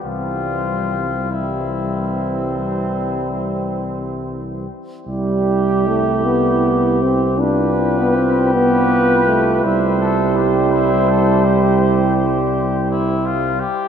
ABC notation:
X:1
M:12/8
L:1/16
Q:3/8=53
K:C
V:1 name="Flugelhorn"
C6 C16 z2 | G12 B6 B6 | c16- c6 z2 |]
V:2 name="Cornet"
F6 E12 z6 | z12 G12 | E2 A2 G2 E2 A2 G8 E2 F2 G2 |]
V:3 name="Euphonium"
G,6 G,16 z2 | E12 F6 F6 | E16- E6 z2 |]
V:4 name="Trombone"
E,6 E,16 z2 | G,4 A,2 B,4 C2 D3 B, C2 B,4 A,2 | G,16- G,6- G, z |]
V:5 name="Tuba" clef=bass
C,,16- C,,6 z2 | C,,24 | C,,16- C,,6 z2 |]